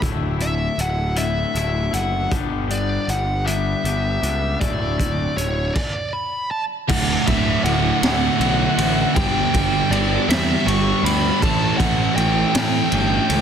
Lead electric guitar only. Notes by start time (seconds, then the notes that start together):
0.42 E5
0.81 F#5
1.18 E5
1.58 E5
1.94 F#5
2.71 D5
3.10 F#5
3.47 E5
4.61 D5
5.37 C#5
5.75 D5
6.13 B5
6.51 A5
6.89 F#5
7.27 E5
7.64 F#5
9.15 G5
9.91 D5
10.29 E5
10.67 C#6
11.05 B5
11.42 A5
11.77 F#5
12.16 G5